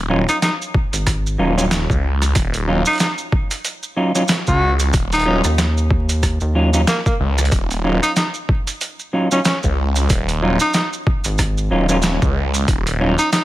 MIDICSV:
0, 0, Header, 1, 6, 480
1, 0, Start_track
1, 0, Key_signature, -6, "minor"
1, 0, Tempo, 645161
1, 1755, Time_signature, 4, 2, 24, 8
1, 9999, End_track
2, 0, Start_track
2, 0, Title_t, "Tenor saxophone"
2, 0, Program_c, 0, 66
2, 215, Note_on_c, 0, 63, 91
2, 279, Note_off_c, 0, 63, 0
2, 318, Note_on_c, 0, 63, 74
2, 405, Note_off_c, 0, 63, 0
2, 2136, Note_on_c, 0, 63, 95
2, 2200, Note_off_c, 0, 63, 0
2, 2233, Note_on_c, 0, 63, 78
2, 2323, Note_off_c, 0, 63, 0
2, 3331, Note_on_c, 0, 66, 92
2, 3512, Note_off_c, 0, 66, 0
2, 3819, Note_on_c, 0, 63, 89
2, 3996, Note_off_c, 0, 63, 0
2, 5118, Note_on_c, 0, 58, 92
2, 5205, Note_off_c, 0, 58, 0
2, 5253, Note_on_c, 0, 58, 76
2, 5318, Note_off_c, 0, 58, 0
2, 5972, Note_on_c, 0, 63, 90
2, 6038, Note_off_c, 0, 63, 0
2, 6078, Note_on_c, 0, 63, 74
2, 6165, Note_off_c, 0, 63, 0
2, 6933, Note_on_c, 0, 61, 81
2, 6998, Note_off_c, 0, 61, 0
2, 7036, Note_on_c, 0, 61, 78
2, 7124, Note_off_c, 0, 61, 0
2, 7895, Note_on_c, 0, 63, 93
2, 7959, Note_off_c, 0, 63, 0
2, 7995, Note_on_c, 0, 63, 74
2, 8083, Note_off_c, 0, 63, 0
2, 9811, Note_on_c, 0, 63, 91
2, 9877, Note_off_c, 0, 63, 0
2, 9913, Note_on_c, 0, 63, 78
2, 9999, Note_off_c, 0, 63, 0
2, 9999, End_track
3, 0, Start_track
3, 0, Title_t, "Clean electric guitar"
3, 0, Program_c, 1, 27
3, 71, Note_on_c, 1, 54, 88
3, 72, Note_on_c, 1, 61, 79
3, 73, Note_on_c, 1, 63, 77
3, 75, Note_on_c, 1, 65, 94
3, 180, Note_off_c, 1, 54, 0
3, 180, Note_off_c, 1, 61, 0
3, 180, Note_off_c, 1, 63, 0
3, 180, Note_off_c, 1, 65, 0
3, 1029, Note_on_c, 1, 54, 85
3, 1035, Note_on_c, 1, 61, 75
3, 1036, Note_on_c, 1, 65, 95
3, 1040, Note_on_c, 1, 63, 74
3, 1140, Note_off_c, 1, 54, 0
3, 1140, Note_off_c, 1, 65, 0
3, 1141, Note_off_c, 1, 61, 0
3, 1141, Note_off_c, 1, 63, 0
3, 1171, Note_on_c, 1, 54, 98
3, 1172, Note_on_c, 1, 65, 102
3, 1173, Note_on_c, 1, 61, 90
3, 1174, Note_on_c, 1, 63, 86
3, 1221, Note_off_c, 1, 65, 0
3, 1222, Note_off_c, 1, 54, 0
3, 1222, Note_off_c, 1, 61, 0
3, 1222, Note_off_c, 1, 63, 0
3, 1989, Note_on_c, 1, 54, 84
3, 1993, Note_on_c, 1, 61, 77
3, 1994, Note_on_c, 1, 63, 79
3, 1999, Note_on_c, 1, 65, 96
3, 2100, Note_off_c, 1, 54, 0
3, 2100, Note_off_c, 1, 63, 0
3, 2101, Note_off_c, 1, 61, 0
3, 2101, Note_off_c, 1, 65, 0
3, 2950, Note_on_c, 1, 54, 84
3, 2952, Note_on_c, 1, 61, 77
3, 2954, Note_on_c, 1, 63, 80
3, 2957, Note_on_c, 1, 65, 94
3, 3060, Note_off_c, 1, 54, 0
3, 3060, Note_off_c, 1, 61, 0
3, 3060, Note_off_c, 1, 63, 0
3, 3060, Note_off_c, 1, 65, 0
3, 3088, Note_on_c, 1, 54, 97
3, 3091, Note_on_c, 1, 61, 86
3, 3093, Note_on_c, 1, 65, 107
3, 3097, Note_on_c, 1, 63, 86
3, 3141, Note_off_c, 1, 54, 0
3, 3141, Note_off_c, 1, 61, 0
3, 3141, Note_off_c, 1, 63, 0
3, 3141, Note_off_c, 1, 65, 0
3, 3912, Note_on_c, 1, 54, 87
3, 3913, Note_on_c, 1, 61, 81
3, 3914, Note_on_c, 1, 65, 99
3, 3916, Note_on_c, 1, 63, 81
3, 4020, Note_off_c, 1, 61, 0
3, 4020, Note_off_c, 1, 65, 0
3, 4021, Note_off_c, 1, 54, 0
3, 4021, Note_off_c, 1, 63, 0
3, 4874, Note_on_c, 1, 54, 79
3, 4875, Note_on_c, 1, 61, 74
3, 4876, Note_on_c, 1, 65, 92
3, 4877, Note_on_c, 1, 63, 76
3, 4981, Note_off_c, 1, 61, 0
3, 4981, Note_off_c, 1, 63, 0
3, 4981, Note_off_c, 1, 65, 0
3, 4982, Note_off_c, 1, 54, 0
3, 5009, Note_on_c, 1, 54, 89
3, 5012, Note_on_c, 1, 61, 84
3, 5014, Note_on_c, 1, 63, 87
3, 5017, Note_on_c, 1, 65, 108
3, 5061, Note_off_c, 1, 54, 0
3, 5061, Note_off_c, 1, 61, 0
3, 5061, Note_off_c, 1, 63, 0
3, 5062, Note_off_c, 1, 65, 0
3, 5832, Note_on_c, 1, 54, 85
3, 5836, Note_on_c, 1, 61, 80
3, 5840, Note_on_c, 1, 65, 97
3, 5844, Note_on_c, 1, 63, 80
3, 5941, Note_off_c, 1, 54, 0
3, 5942, Note_off_c, 1, 61, 0
3, 5942, Note_off_c, 1, 63, 0
3, 5942, Note_off_c, 1, 65, 0
3, 6793, Note_on_c, 1, 54, 79
3, 6795, Note_on_c, 1, 61, 79
3, 6798, Note_on_c, 1, 63, 72
3, 6801, Note_on_c, 1, 65, 88
3, 6901, Note_off_c, 1, 61, 0
3, 6902, Note_off_c, 1, 54, 0
3, 6902, Note_off_c, 1, 63, 0
3, 6902, Note_off_c, 1, 65, 0
3, 6933, Note_on_c, 1, 54, 90
3, 6935, Note_on_c, 1, 61, 82
3, 6935, Note_on_c, 1, 65, 98
3, 6938, Note_on_c, 1, 63, 84
3, 6982, Note_off_c, 1, 65, 0
3, 6983, Note_off_c, 1, 54, 0
3, 6983, Note_off_c, 1, 61, 0
3, 6983, Note_off_c, 1, 63, 0
3, 7753, Note_on_c, 1, 54, 90
3, 7754, Note_on_c, 1, 61, 79
3, 7756, Note_on_c, 1, 63, 80
3, 7759, Note_on_c, 1, 65, 97
3, 7861, Note_off_c, 1, 54, 0
3, 7861, Note_off_c, 1, 61, 0
3, 7861, Note_off_c, 1, 63, 0
3, 7861, Note_off_c, 1, 65, 0
3, 8711, Note_on_c, 1, 54, 83
3, 8714, Note_on_c, 1, 61, 73
3, 8716, Note_on_c, 1, 63, 79
3, 8718, Note_on_c, 1, 65, 94
3, 8821, Note_off_c, 1, 54, 0
3, 8821, Note_off_c, 1, 61, 0
3, 8821, Note_off_c, 1, 63, 0
3, 8821, Note_off_c, 1, 65, 0
3, 8848, Note_on_c, 1, 54, 97
3, 8852, Note_on_c, 1, 61, 88
3, 8855, Note_on_c, 1, 63, 84
3, 8858, Note_on_c, 1, 65, 107
3, 8901, Note_off_c, 1, 54, 0
3, 8901, Note_off_c, 1, 61, 0
3, 8902, Note_off_c, 1, 63, 0
3, 8902, Note_off_c, 1, 65, 0
3, 9673, Note_on_c, 1, 54, 84
3, 9676, Note_on_c, 1, 61, 83
3, 9680, Note_on_c, 1, 65, 94
3, 9683, Note_on_c, 1, 63, 80
3, 9782, Note_off_c, 1, 54, 0
3, 9782, Note_off_c, 1, 61, 0
3, 9782, Note_off_c, 1, 63, 0
3, 9782, Note_off_c, 1, 65, 0
3, 9999, End_track
4, 0, Start_track
4, 0, Title_t, "Analog synth bass"
4, 0, Program_c, 2, 38
4, 693, Note_on_c, 2, 32, 102
4, 1018, Note_off_c, 2, 32, 0
4, 4052, Note_on_c, 2, 39, 101
4, 4751, Note_off_c, 2, 39, 0
4, 4772, Note_on_c, 2, 39, 97
4, 5098, Note_off_c, 2, 39, 0
4, 8372, Note_on_c, 2, 32, 103
4, 8698, Note_off_c, 2, 32, 0
4, 9999, End_track
5, 0, Start_track
5, 0, Title_t, "Detuned saw bass"
5, 0, Program_c, 3, 39
5, 0, Note_on_c, 3, 27, 97
5, 191, Note_off_c, 3, 27, 0
5, 1034, Note_on_c, 3, 27, 98
5, 1391, Note_off_c, 3, 27, 0
5, 1412, Note_on_c, 3, 37, 96
5, 1738, Note_off_c, 3, 37, 0
5, 1752, Note_on_c, 3, 27, 102
5, 2110, Note_off_c, 3, 27, 0
5, 3332, Note_on_c, 3, 37, 94
5, 3658, Note_off_c, 3, 37, 0
5, 3674, Note_on_c, 3, 27, 98
5, 4031, Note_off_c, 3, 27, 0
5, 5356, Note_on_c, 3, 37, 101
5, 5579, Note_off_c, 3, 37, 0
5, 5596, Note_on_c, 3, 27, 99
5, 5952, Note_off_c, 3, 27, 0
5, 7173, Note_on_c, 3, 37, 101
5, 7498, Note_off_c, 3, 37, 0
5, 7515, Note_on_c, 3, 27, 97
5, 7871, Note_off_c, 3, 27, 0
5, 8714, Note_on_c, 3, 27, 100
5, 9071, Note_off_c, 3, 27, 0
5, 9092, Note_on_c, 3, 37, 104
5, 9418, Note_off_c, 3, 37, 0
5, 9435, Note_on_c, 3, 27, 93
5, 9791, Note_off_c, 3, 27, 0
5, 9999, End_track
6, 0, Start_track
6, 0, Title_t, "Drums"
6, 213, Note_on_c, 9, 37, 38
6, 213, Note_on_c, 9, 42, 41
6, 214, Note_on_c, 9, 70, 83
6, 287, Note_off_c, 9, 37, 0
6, 287, Note_off_c, 9, 42, 0
6, 288, Note_off_c, 9, 70, 0
6, 315, Note_on_c, 9, 38, 125
6, 315, Note_on_c, 9, 42, 82
6, 315, Note_on_c, 9, 70, 67
6, 390, Note_off_c, 9, 38, 0
6, 390, Note_off_c, 9, 42, 0
6, 390, Note_off_c, 9, 70, 0
6, 460, Note_on_c, 9, 70, 44
6, 534, Note_off_c, 9, 70, 0
6, 554, Note_on_c, 9, 36, 108
6, 629, Note_off_c, 9, 36, 0
6, 693, Note_on_c, 9, 42, 56
6, 695, Note_on_c, 9, 70, 80
6, 767, Note_off_c, 9, 42, 0
6, 769, Note_off_c, 9, 70, 0
6, 793, Note_on_c, 9, 37, 53
6, 793, Note_on_c, 9, 42, 77
6, 794, Note_on_c, 9, 36, 65
6, 794, Note_on_c, 9, 70, 65
6, 867, Note_off_c, 9, 37, 0
6, 867, Note_off_c, 9, 42, 0
6, 868, Note_off_c, 9, 70, 0
6, 869, Note_off_c, 9, 36, 0
6, 940, Note_on_c, 9, 70, 46
6, 1015, Note_off_c, 9, 70, 0
6, 1178, Note_on_c, 9, 70, 88
6, 1252, Note_off_c, 9, 70, 0
6, 1273, Note_on_c, 9, 38, 127
6, 1273, Note_on_c, 9, 42, 88
6, 1281, Note_on_c, 9, 70, 72
6, 1347, Note_off_c, 9, 38, 0
6, 1347, Note_off_c, 9, 42, 0
6, 1355, Note_off_c, 9, 70, 0
6, 1412, Note_on_c, 9, 36, 106
6, 1419, Note_on_c, 9, 70, 37
6, 1486, Note_off_c, 9, 36, 0
6, 1494, Note_off_c, 9, 70, 0
6, 1650, Note_on_c, 9, 37, 42
6, 1650, Note_on_c, 9, 42, 41
6, 1653, Note_on_c, 9, 70, 82
6, 1724, Note_off_c, 9, 37, 0
6, 1724, Note_off_c, 9, 42, 0
6, 1727, Note_off_c, 9, 70, 0
6, 1750, Note_on_c, 9, 42, 82
6, 1753, Note_on_c, 9, 36, 118
6, 1755, Note_on_c, 9, 70, 75
6, 1824, Note_off_c, 9, 42, 0
6, 1827, Note_off_c, 9, 36, 0
6, 1829, Note_off_c, 9, 70, 0
6, 1888, Note_on_c, 9, 42, 56
6, 1890, Note_on_c, 9, 70, 44
6, 1963, Note_off_c, 9, 42, 0
6, 1964, Note_off_c, 9, 70, 0
6, 2124, Note_on_c, 9, 70, 90
6, 2128, Note_on_c, 9, 42, 17
6, 2145, Note_off_c, 9, 42, 0
6, 2145, Note_on_c, 9, 42, 20
6, 2150, Note_off_c, 9, 42, 0
6, 2150, Note_on_c, 9, 42, 23
6, 2181, Note_off_c, 9, 42, 0
6, 2181, Note_on_c, 9, 42, 27
6, 2198, Note_off_c, 9, 42, 0
6, 2198, Note_on_c, 9, 42, 30
6, 2199, Note_off_c, 9, 70, 0
6, 2216, Note_off_c, 9, 42, 0
6, 2216, Note_on_c, 9, 42, 33
6, 2229, Note_on_c, 9, 70, 70
6, 2234, Note_off_c, 9, 42, 0
6, 2234, Note_on_c, 9, 38, 123
6, 2234, Note_on_c, 9, 42, 86
6, 2304, Note_off_c, 9, 70, 0
6, 2308, Note_off_c, 9, 38, 0
6, 2308, Note_off_c, 9, 42, 0
6, 2366, Note_on_c, 9, 70, 41
6, 2440, Note_off_c, 9, 70, 0
6, 2473, Note_on_c, 9, 36, 109
6, 2547, Note_off_c, 9, 36, 0
6, 2609, Note_on_c, 9, 70, 88
6, 2611, Note_on_c, 9, 42, 54
6, 2683, Note_off_c, 9, 70, 0
6, 2686, Note_off_c, 9, 42, 0
6, 2712, Note_on_c, 9, 42, 79
6, 2713, Note_on_c, 9, 70, 73
6, 2786, Note_off_c, 9, 42, 0
6, 2787, Note_off_c, 9, 70, 0
6, 2849, Note_on_c, 9, 70, 46
6, 2923, Note_off_c, 9, 70, 0
6, 3089, Note_on_c, 9, 70, 92
6, 3163, Note_off_c, 9, 70, 0
6, 3183, Note_on_c, 9, 70, 71
6, 3193, Note_on_c, 9, 38, 125
6, 3193, Note_on_c, 9, 42, 86
6, 3258, Note_off_c, 9, 70, 0
6, 3268, Note_off_c, 9, 38, 0
6, 3268, Note_off_c, 9, 42, 0
6, 3324, Note_on_c, 9, 70, 44
6, 3331, Note_on_c, 9, 36, 64
6, 3399, Note_off_c, 9, 70, 0
6, 3406, Note_off_c, 9, 36, 0
6, 3567, Note_on_c, 9, 70, 85
6, 3572, Note_on_c, 9, 42, 40
6, 3642, Note_off_c, 9, 70, 0
6, 3647, Note_off_c, 9, 42, 0
6, 3669, Note_on_c, 9, 70, 70
6, 3673, Note_on_c, 9, 36, 122
6, 3673, Note_on_c, 9, 42, 76
6, 3743, Note_off_c, 9, 70, 0
6, 3748, Note_off_c, 9, 36, 0
6, 3748, Note_off_c, 9, 42, 0
6, 3810, Note_on_c, 9, 70, 45
6, 3812, Note_on_c, 9, 42, 50
6, 3830, Note_off_c, 9, 42, 0
6, 3830, Note_on_c, 9, 42, 42
6, 3834, Note_off_c, 9, 42, 0
6, 3834, Note_on_c, 9, 42, 33
6, 3864, Note_off_c, 9, 42, 0
6, 3864, Note_on_c, 9, 42, 28
6, 3880, Note_off_c, 9, 42, 0
6, 3880, Note_on_c, 9, 42, 23
6, 3884, Note_off_c, 9, 70, 0
6, 3897, Note_off_c, 9, 42, 0
6, 3897, Note_on_c, 9, 42, 19
6, 3971, Note_off_c, 9, 42, 0
6, 4047, Note_on_c, 9, 70, 76
6, 4052, Note_on_c, 9, 37, 36
6, 4121, Note_off_c, 9, 70, 0
6, 4127, Note_off_c, 9, 37, 0
6, 4154, Note_on_c, 9, 38, 122
6, 4154, Note_on_c, 9, 42, 78
6, 4154, Note_on_c, 9, 70, 66
6, 4228, Note_off_c, 9, 38, 0
6, 4228, Note_off_c, 9, 42, 0
6, 4228, Note_off_c, 9, 70, 0
6, 4297, Note_on_c, 9, 70, 39
6, 4371, Note_off_c, 9, 70, 0
6, 4394, Note_on_c, 9, 36, 106
6, 4468, Note_off_c, 9, 36, 0
6, 4532, Note_on_c, 9, 70, 82
6, 4533, Note_on_c, 9, 42, 54
6, 4606, Note_off_c, 9, 70, 0
6, 4607, Note_off_c, 9, 42, 0
6, 4634, Note_on_c, 9, 36, 64
6, 4634, Note_on_c, 9, 70, 70
6, 4636, Note_on_c, 9, 37, 50
6, 4636, Note_on_c, 9, 42, 76
6, 4708, Note_off_c, 9, 70, 0
6, 4709, Note_off_c, 9, 36, 0
6, 4710, Note_off_c, 9, 37, 0
6, 4710, Note_off_c, 9, 42, 0
6, 4764, Note_on_c, 9, 70, 39
6, 4839, Note_off_c, 9, 70, 0
6, 5010, Note_on_c, 9, 70, 82
6, 5084, Note_off_c, 9, 70, 0
6, 5114, Note_on_c, 9, 38, 127
6, 5114, Note_on_c, 9, 42, 80
6, 5115, Note_on_c, 9, 70, 75
6, 5188, Note_off_c, 9, 38, 0
6, 5188, Note_off_c, 9, 42, 0
6, 5189, Note_off_c, 9, 70, 0
6, 5253, Note_on_c, 9, 36, 107
6, 5254, Note_on_c, 9, 70, 45
6, 5328, Note_off_c, 9, 36, 0
6, 5328, Note_off_c, 9, 70, 0
6, 5491, Note_on_c, 9, 70, 77
6, 5494, Note_on_c, 9, 37, 41
6, 5544, Note_on_c, 9, 42, 40
6, 5565, Note_off_c, 9, 70, 0
6, 5568, Note_off_c, 9, 37, 0
6, 5591, Note_on_c, 9, 70, 66
6, 5595, Note_off_c, 9, 42, 0
6, 5595, Note_on_c, 9, 36, 114
6, 5595, Note_on_c, 9, 42, 77
6, 5666, Note_off_c, 9, 70, 0
6, 5669, Note_off_c, 9, 36, 0
6, 5670, Note_off_c, 9, 42, 0
6, 5733, Note_on_c, 9, 70, 44
6, 5734, Note_on_c, 9, 42, 52
6, 5808, Note_off_c, 9, 42, 0
6, 5808, Note_off_c, 9, 70, 0
6, 5974, Note_on_c, 9, 42, 36
6, 5976, Note_on_c, 9, 70, 77
6, 6049, Note_off_c, 9, 42, 0
6, 6050, Note_off_c, 9, 70, 0
6, 6072, Note_on_c, 9, 70, 66
6, 6075, Note_on_c, 9, 38, 119
6, 6075, Note_on_c, 9, 42, 76
6, 6147, Note_off_c, 9, 70, 0
6, 6150, Note_off_c, 9, 38, 0
6, 6150, Note_off_c, 9, 42, 0
6, 6205, Note_on_c, 9, 70, 37
6, 6280, Note_off_c, 9, 70, 0
6, 6315, Note_on_c, 9, 36, 101
6, 6390, Note_off_c, 9, 36, 0
6, 6452, Note_on_c, 9, 42, 50
6, 6453, Note_on_c, 9, 70, 74
6, 6527, Note_off_c, 9, 42, 0
6, 6527, Note_off_c, 9, 70, 0
6, 6552, Note_on_c, 9, 70, 71
6, 6555, Note_on_c, 9, 42, 75
6, 6627, Note_off_c, 9, 70, 0
6, 6630, Note_off_c, 9, 42, 0
6, 6691, Note_on_c, 9, 70, 37
6, 6765, Note_off_c, 9, 70, 0
6, 6929, Note_on_c, 9, 70, 79
6, 7003, Note_off_c, 9, 70, 0
6, 7028, Note_on_c, 9, 70, 72
6, 7034, Note_on_c, 9, 38, 120
6, 7034, Note_on_c, 9, 42, 81
6, 7103, Note_off_c, 9, 70, 0
6, 7109, Note_off_c, 9, 38, 0
6, 7109, Note_off_c, 9, 42, 0
6, 7166, Note_on_c, 9, 70, 41
6, 7173, Note_on_c, 9, 36, 59
6, 7240, Note_off_c, 9, 70, 0
6, 7247, Note_off_c, 9, 36, 0
6, 7407, Note_on_c, 9, 70, 75
6, 7412, Note_on_c, 9, 42, 36
6, 7481, Note_off_c, 9, 70, 0
6, 7487, Note_off_c, 9, 42, 0
6, 7510, Note_on_c, 9, 70, 58
6, 7514, Note_on_c, 9, 36, 112
6, 7514, Note_on_c, 9, 42, 79
6, 7584, Note_off_c, 9, 70, 0
6, 7588, Note_off_c, 9, 42, 0
6, 7589, Note_off_c, 9, 36, 0
6, 7652, Note_on_c, 9, 70, 38
6, 7653, Note_on_c, 9, 42, 52
6, 7726, Note_off_c, 9, 70, 0
6, 7727, Note_off_c, 9, 42, 0
6, 7883, Note_on_c, 9, 70, 81
6, 7892, Note_on_c, 9, 42, 33
6, 7957, Note_off_c, 9, 70, 0
6, 7966, Note_off_c, 9, 42, 0
6, 7985, Note_on_c, 9, 70, 67
6, 7994, Note_on_c, 9, 38, 117
6, 7994, Note_on_c, 9, 42, 74
6, 8060, Note_off_c, 9, 70, 0
6, 8068, Note_off_c, 9, 38, 0
6, 8068, Note_off_c, 9, 42, 0
6, 8132, Note_on_c, 9, 70, 41
6, 8207, Note_off_c, 9, 70, 0
6, 8234, Note_on_c, 9, 36, 101
6, 8308, Note_off_c, 9, 36, 0
6, 8364, Note_on_c, 9, 70, 86
6, 8372, Note_on_c, 9, 42, 51
6, 8439, Note_off_c, 9, 70, 0
6, 8446, Note_off_c, 9, 42, 0
6, 8467, Note_on_c, 9, 70, 63
6, 8473, Note_on_c, 9, 36, 60
6, 8474, Note_on_c, 9, 37, 52
6, 8474, Note_on_c, 9, 42, 75
6, 8542, Note_off_c, 9, 70, 0
6, 8548, Note_off_c, 9, 36, 0
6, 8548, Note_off_c, 9, 37, 0
6, 8548, Note_off_c, 9, 42, 0
6, 8613, Note_on_c, 9, 70, 40
6, 8687, Note_off_c, 9, 70, 0
6, 8844, Note_on_c, 9, 70, 77
6, 8919, Note_off_c, 9, 70, 0
6, 8943, Note_on_c, 9, 70, 67
6, 8954, Note_on_c, 9, 38, 119
6, 8954, Note_on_c, 9, 42, 79
6, 9018, Note_off_c, 9, 70, 0
6, 9028, Note_off_c, 9, 38, 0
6, 9028, Note_off_c, 9, 42, 0
6, 9091, Note_on_c, 9, 70, 37
6, 9092, Note_on_c, 9, 36, 102
6, 9166, Note_off_c, 9, 70, 0
6, 9167, Note_off_c, 9, 36, 0
6, 9330, Note_on_c, 9, 70, 79
6, 9333, Note_on_c, 9, 42, 37
6, 9404, Note_off_c, 9, 70, 0
6, 9407, Note_off_c, 9, 42, 0
6, 9432, Note_on_c, 9, 70, 53
6, 9434, Note_on_c, 9, 36, 112
6, 9434, Note_on_c, 9, 42, 78
6, 9507, Note_off_c, 9, 70, 0
6, 9508, Note_off_c, 9, 36, 0
6, 9508, Note_off_c, 9, 42, 0
6, 9573, Note_on_c, 9, 42, 53
6, 9574, Note_on_c, 9, 70, 41
6, 9648, Note_off_c, 9, 42, 0
6, 9648, Note_off_c, 9, 70, 0
6, 9809, Note_on_c, 9, 70, 70
6, 9814, Note_on_c, 9, 42, 36
6, 9883, Note_off_c, 9, 70, 0
6, 9888, Note_off_c, 9, 42, 0
6, 9914, Note_on_c, 9, 70, 58
6, 9915, Note_on_c, 9, 38, 116
6, 9915, Note_on_c, 9, 42, 79
6, 9988, Note_off_c, 9, 70, 0
6, 9990, Note_off_c, 9, 38, 0
6, 9990, Note_off_c, 9, 42, 0
6, 9999, End_track
0, 0, End_of_file